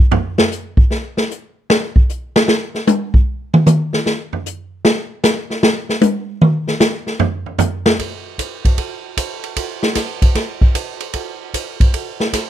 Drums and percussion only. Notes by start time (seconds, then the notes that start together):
0.11 floor tom
0.38 snare
0.52 hi-hat pedal
0.77 kick
0.91 snare
1.17 snare
1.31 hi-hat pedal
1.70 snare
1.96 kick
2.09 hi-hat pedal
2.36 snare
2.48 snare
2.74 snare
2.87 hi-hat pedal, high tom
3.14 kick
3.54 mid tom
3.66 hi-hat pedal, mid tom
3.93 snare
4.06 snare
4.33 floor tom
4.46 hi-hat pedal
4.85 snare
5.24 snare, hi-hat pedal
5.50 snare
5.63 snare
5.89 snare
6.01 hi-hat pedal, high tom
6.41 mid tom
6.67 snare
6.80 snare, hi-hat pedal
7.07 snare
7.19 floor tom
7.46 floor tom
7.58 floor tom, hi-hat pedal
7.86 snare
7.99 kick, ride
8.38 kick, hi-hat pedal, ride
8.65 kick, ride
8.78 kick, ride
9.17 kick, hi-hat pedal, ride
9.44 ride
9.56 kick, ride
9.83 snare
9.95 kick, snare, hi-hat pedal, ride
10.22 kick, ride
10.35 kick, snare, ride
10.61 kick
10.75 kick, hi-hat pedal, ride
11.00 ride
11.13 kick, ride
11.54 kick, hi-hat pedal, ride
11.80 kick, ride
11.93 kick, ride
12.20 snare
12.33 kick, snare, hi-hat pedal, ride